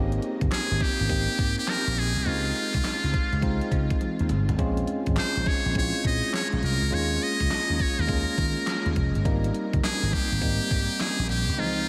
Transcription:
Already playing: slap bass G#1, tine electric piano A#3 C4 C#4 D#4 G4 A#4
0.12 closed hi-hat
0.22 closed hi-hat
0.41 slap bass G1, kick, closed hi-hat
0.51 muted trumpet G#4, snare, clap, closed hi-hat
0.70 slap bass G#1, closed hi-hat
0.80 muted trumpet G4, kick, snare, closed hi-hat
1.00 slap bass G#1, closed hi-hat
1.09 slap bass G#1, tine electric piano A#3 C4 D#4 G4, kick, closed hi-hat
1.29 closed hi-hat
1.39 slap bass G#2, kick, closed hi-hat
1.58 muted trumpet G4, closed hi-hat
1.67 muted trumpet A#4, snare, clap, closed hi-hat
1.86 slap bass A#1, closed hi-hat
1.97 slap bass A#1, muted trumpet G#4, closed hi-hat
2.16 slap bass C2, closed hi-hat
2.25 slap bass C#2, tine electric piano G#3 C4 D#4 F4, muted trumpet F4, closed hi-hat
2.45 closed hi-hat
2.56 closed hi-hat
2.74 slap bass C2, kick, closed hi-hat
2.84 snare, clap, closed hi-hat
3.04 slap bass C#2, closed hi-hat
3.14 kick, closed hi-hat
3.32 slap bass C#2, closed hi-hat
3.42 slap bass C#2, tine electric piano G#3 C4 D#4 F4, kick, closed hi-hat
3.61 closed hi-hat
3.71 slap bass C#3, kick, closed hi-hat
3.90 kick, closed hi-hat
4.01 closed hi-hat, high tom
4.19 slap bass D#2, closed hi-hat
4.29 slap bass G1, closed hi-hat, mid tom
4.49 slap bass G#1, closed hi-hat, floor tom
4.59 slap bass A#1, tine electric piano G#3 C4 C#4 F4, kick, closed hi-hat
4.77 closed hi-hat
4.87 closed hi-hat
5.06 slap bass G#1, kick, closed hi-hat
5.16 muted trumpet C5, muted slap bass stroke, snare, clap, closed hi-hat
5.36 slap bass A#1, closed hi-hat
5.46 muted trumpet C#5, kick, snare, closed hi-hat
5.65 slap bass A#1, closed hi-hat
5.75 slap bass A#1, tine electric piano G#3 C4 C#4 E4, muted trumpet C#5, kick, closed hi-hat
5.83 tine electric piano F4
5.94 closed hi-hat
6.04 slap bass A#2, muted trumpet D#5, kick, closed hi-hat
6.24 closed hi-hat
6.34 muted trumpet C#5, snare, clap, closed hi-hat
6.52 slap bass A#1, closed hi-hat
6.63 slap bass C2, muted trumpet A#4, closed hi-hat
6.82 slap bass C#2, closed hi-hat
6.91 slap bass D#2, tine electric piano G#3 A#3 C#4 F4, muted trumpet C#5, closed hi-hat
7.11 closed hi-hat
7.22 muted trumpet D#5, closed hi-hat
7.40 slap bass C#2, kick, closed hi-hat
7.51 snare, clap, closed hi-hat
7.69 slap bass D#2, closed hi-hat
7.79 muted trumpet C#5, kick, closed hi-hat
7.99 slap bass D#2, muted trumpet A#4, closed hi-hat
8.07 slap bass D#2, tine electric piano G#3 A#3 C#4 F4, kick, closed hi-hat
8.28 closed hi-hat
8.38 slap bass D#3, kick, closed hi-hat
8.57 closed hi-hat
8.67 snare, clap, closed hi-hat
8.86 slap bass D#2, closed hi-hat
8.96 slap bass F1, kick, closed hi-hat
9.15 slap bass G1, closed hi-hat
9.25 slap bass G#1, tine electric piano G3 A#3 C4 D#4, kick, closed hi-hat
9.44 closed hi-hat
9.54 closed hi-hat
9.73 slap bass G1, kick, closed hi-hat
9.84 muted trumpet G#4, muted slap bass stroke, snare, clap, closed hi-hat
10.03 slap bass G#1, closed hi-hat
10.13 muted trumpet G4, kick, snare, closed hi-hat
10.32 slap bass G#1, closed hi-hat
10.41 slap bass G#1, tine electric piano G3 A#3 C4 D#4, kick, closed hi-hat
10.61 closed hi-hat
10.71 slap bass G#2, kick, closed hi-hat
10.90 closed hi-hat
11.00 muted trumpet G#4, snare, clap, closed hi-hat
11.19 slap bass A#1, closed hi-hat
11.29 slap bass A#1, muted trumpet G4, closed hi-hat
11.49 slap bass C2, closed hi-hat
11.57 tine electric piano C#2 E3 G#3 C4 D#4, muted trumpet F4
11.64 tine electric piano F3

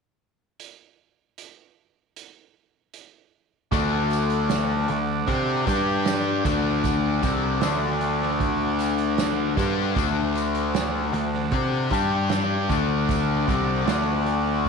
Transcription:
0.60 closed hi-hat
1.38 closed hi-hat
2.16 closed hi-hat
2.94 closed hi-hat
3.71 picked electric bass D2, distorted electric guitar D3 A3 D4, transistor combo organ D4 A4 D5 F#5, kick, closed hi-hat, tambourine
4.10 closed hi-hat, tambourine
4.30 closed hi-hat
4.49 snare, closed hi-hat, tambourine
4.88 picked electric bass D2, distorted electric guitar D3 A3, closed hi-hat
5.27 picked electric bass C3, distorted electric guitar C4 G4 C5, kick, closed hi-hat
5.67 picked electric bass G2, distorted electric guitar G3 D4 G4, transistor combo organ D4 G4 G5, kick, closed hi-hat, tambourine
6.05 snare, closed hi-hat, tambourine
6.45 picked electric bass D2, distorted electric guitar D3 A3 D4, transistor combo organ D4 A4 F#5, kick, closed hi-hat, tambourine
6.84 kick, closed hi-hat, tambourine
7.23 picked electric bass C2, distorted electric guitar C3 G3 C4, kick, closed hi-hat, tambourine
7.61 picked electric bass D2, distorted electric guitar D3 A3 D4, snare, closed hi-hat, tambourine
8.01 closed hi-hat
8.22 snare
8.40 kick, closed hi-hat
8.79 closed hi-hat, tambourine
8.98 closed hi-hat
9.18 snare, closed hi-hat, tambourine
9.57 picked electric bass G2, distorted electric guitar G3 D4 G4, transistor combo organ C5, kick, closed hi-hat, tambourine
9.95 picked electric bass D2, distorted electric guitar D3 A3 D4, kick, closed hi-hat, tambourine
10.35 closed hi-hat, tambourine
10.55 closed hi-hat
10.74 snare, closed hi-hat, tambourine
11.13 picked electric bass D2, distorted electric guitar D3 A3, closed hi-hat
11.33 snare
11.51 picked electric bass C3, distorted electric guitar C4 G4 C5, kick, closed hi-hat
11.90 picked electric bass G2, distorted electric guitar G3 D4 G4, transistor combo organ D4 G4 D5 G5, kick, closed hi-hat, tambourine
12.29 snare, closed hi-hat, tambourine
12.68 picked electric bass D2, distorted electric guitar D3 A3 D4, transistor combo organ D4 A4 F#5, kick, closed hi-hat, tambourine
13.09 kick, closed hi-hat, tambourine
13.47 picked electric bass C2, distorted electric guitar C3 G3 C4, kick, closed hi-hat, tambourine
13.86 picked electric bass D2, distorted electric guitar D3 A3 D4, snare, closed hi-hat, tambourine
14.26 closed hi-hat, tambourine
14.66 kick

